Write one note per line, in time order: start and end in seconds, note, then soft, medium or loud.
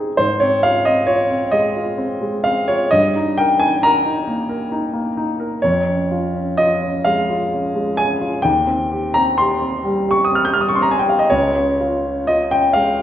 0.00 0.13 C3 medium
0.00 0.20 C4 soft
0.00 0.20 D#4 medium
0.00 0.20 G#4 medium
0.00 0.17 G#5 loud
0.17 2.87 G#2 medium
0.17 0.41 C5 medium
0.40 0.77 C4 soft
0.40 0.63 C#5 medium
0.63 1.00 F4 medium
0.63 0.86 F5 loud
0.85 1.22 C4 soft
0.85 1.07 D#5 medium
1.07 1.43 F4 soft
1.07 1.51 C#5 medium
1.31 1.65 C4 soft
1.51 1.88 G#3 medium
1.51 2.43 D#5 medium
1.77 2.12 F4 soft
1.98 2.34 C4 medium
2.21 2.58 G#3 soft
2.44 2.82 C4 soft
2.44 2.67 F5 medium
2.68 2.91 F4 medium
2.68 2.91 C#5 medium
2.91 5.60 G2 medium
2.91 3.37 D#5 medium
3.16 3.51 D#4 soft
3.38 3.74 A#4 medium
3.38 3.60 G5 medium
3.60 3.97 D#4 soft
3.60 3.82 G#5 loud
3.83 4.19 A#4 medium
3.83 5.63 A#5 loud
4.06 4.41 D#4 soft
4.27 4.63 A#3 medium
4.49 4.85 A#4 medium
4.72 5.07 D#4 medium
4.93 5.30 A#3 medium
5.17 5.54 D#4 medium
5.40 5.63 A#4 soft
5.62 8.40 F2 medium
5.62 6.57 C#5 medium
5.88 6.25 C#4 soft
6.11 6.49 F4 medium
6.34 6.72 C#4 soft
6.58 6.96 F4 medium
6.58 7.05 D#5 medium
6.82 7.20 C#4 medium
7.05 7.43 G#3 medium
7.05 7.97 F5 loud
7.30 7.66 F4 soft
7.53 7.89 C#4 medium
7.76 8.12 G#3 medium
7.97 8.35 C#4 soft
7.97 8.43 G#5 loud
8.21 8.44 F4 medium
8.42 11.26 D#2 medium
8.42 9.14 G5 medium
8.67 9.05 C4 medium
8.91 9.29 G4 medium
9.14 9.53 C4 soft
9.14 9.38 A#5 medium
9.38 9.76 G4 medium
9.38 10.12 C6 loud
9.62 9.99 C4 soft
9.85 10.22 G3 medium
10.08 10.46 G4 medium
10.08 10.25 C#6 medium
10.25 10.36 D#6 medium
10.32 10.70 C4 soft
10.32 10.46 F6 medium
10.45 10.54 G6 medium
10.54 10.94 G3 medium
10.54 10.62 F6 medium
10.61 10.69 D#6 medium
10.69 10.76 C#6 medium
10.75 10.83 C6 medium
10.80 11.19 C4 medium
10.80 10.91 A#5 medium
10.91 11.00 G#5 medium
10.99 11.09 G5 medium
11.06 11.30 G4 soft
11.06 11.19 F5 medium
11.19 11.29 D#5 medium
11.30 13.02 C#2 medium
11.30 12.27 C#5 loud
11.56 11.94 C#4 medium
11.81 12.18 F4 medium
12.06 12.42 C#4 soft
12.27 12.65 F4 soft
12.27 12.51 D#5 medium
12.51 12.89 C#4 soft
12.51 12.74 G5 medium
12.73 13.02 G#3 soft
12.73 13.02 F5 loud